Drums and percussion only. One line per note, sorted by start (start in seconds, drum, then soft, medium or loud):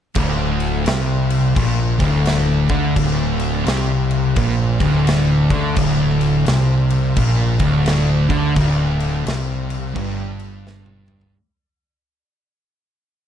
0.15 kick loud
0.15 crash medium
0.60 crash medium
0.86 snare loud
0.86 crash medium
1.30 crash medium
1.56 kick loud
1.56 crash medium
2.00 kick loud
2.00 crash medium
2.26 snare loud
2.26 crash medium
2.69 kick loud
2.69 crash medium
2.96 kick loud
2.96 crash medium
3.40 crash medium
3.67 snare loud
3.67 crash medium
4.11 crash medium
4.36 kick loud
4.36 crash medium
4.80 kick loud
4.80 crash medium
5.07 snare loud
5.07 crash medium
5.50 kick loud
5.50 crash medium
5.76 kick loud
5.76 crash medium
6.21 crash medium
6.46 snare loud
6.46 crash medium
6.90 crash medium
7.17 kick loud
7.17 crash medium
7.59 kick loud
7.59 crash medium
7.86 snare loud
7.86 crash medium
8.30 kick loud
8.30 crash medium
8.56 kick loud
8.56 crash medium
9.00 crash medium
9.27 snare loud
9.27 crash medium
9.70 crash medium
9.96 kick loud
9.96 crash medium
10.40 crash medium
10.67 snare medium
10.86 high tom medium
11.08 mid tom medium
11.21 floor tom medium